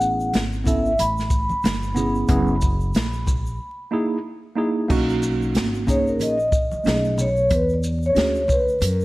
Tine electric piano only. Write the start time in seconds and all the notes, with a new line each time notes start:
Already playing: B3 C#4 E4 G#4
0.64 B3 C#4 E4 A4
1.95 B3 C#4 E4 G#4
2.29 B3 C#4 E4 G#4
3.91 A#3 D#4 E4 G#4
4.55 A#3 D#4 E4 G#4
4.88 A#3 C#4 D#4 F#4
5.87 A#3 C#4 D#4 G#4
6.84 A3 C#4 D#4 G#4
8.14 C#4 D4 F#4 G#4